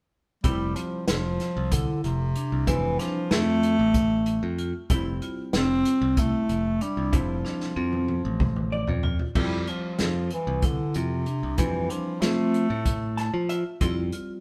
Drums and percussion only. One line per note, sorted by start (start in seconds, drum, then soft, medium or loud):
0.44 kick loud
0.44 closed hi-hat medium
0.76 closed hi-hat medium
1.08 snare medium
1.08 closed hi-hat medium
1.40 snare soft
1.40 closed hi-hat medium
1.72 kick loud
1.72 closed hi-hat medium
2.04 closed hi-hat medium
2.35 closed hi-hat medium
2.67 kick loud
2.67 closed hi-hat medium
2.99 snare soft
2.99 closed hi-hat medium
3.31 snare loud
3.31 closed hi-hat medium
3.63 closed hi-hat medium
3.94 kick loud
3.94 closed hi-hat medium
4.26 closed hi-hat medium
4.58 closed hi-hat soft
4.90 kick loud
4.90 closed hi-hat medium
5.22 closed hi-hat medium
5.53 snare medium
5.53 closed hi-hat medium
5.85 closed hi-hat medium
6.17 kick loud
6.17 closed hi-hat medium
6.49 closed hi-hat medium
6.81 closed hi-hat medium
7.13 kick loud
7.13 closed hi-hat medium
7.45 snare medium
7.60 snare medium
7.93 high tom medium
8.08 high tom medium
8.40 kick loud
8.40 mid tom medium
8.56 mid tom medium
8.87 floor tom medium
9.03 floor tom medium
9.19 floor tom medium
9.35 kick medium
9.35 crash medium
9.67 closed hi-hat soft
9.99 snare medium
9.99 closed hi-hat medium
10.30 closed hi-hat soft
10.62 kick loud
10.62 closed hi-hat medium
10.94 closed hi-hat medium
11.26 closed hi-hat medium
11.58 kick loud
11.58 closed hi-hat medium
11.90 closed hi-hat medium
12.22 snare medium
12.22 closed hi-hat medium
12.54 closed hi-hat medium
12.85 kick medium
12.85 closed hi-hat medium
13.18 snare soft
13.18 closed hi-hat medium
13.49 closed hi-hat medium
13.81 kick medium
13.81 closed hi-hat medium
14.12 closed hi-hat medium